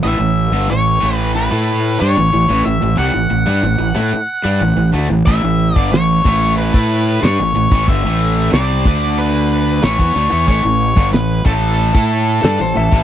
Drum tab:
HH |----------------|----------------|x-x-x-x-x-x-x-x-|x-x-x-x-x-x-x-x-|
SD |----------------|----------------|----o-------o--o|----oo------o---|
BD |----------------|----------------|o--o--o--o-----o|o-----o------o--|

HH |x-x-x-x-x-x-x-x-|
SD |----o-------o--o|
BD |o--o--o--o-----o|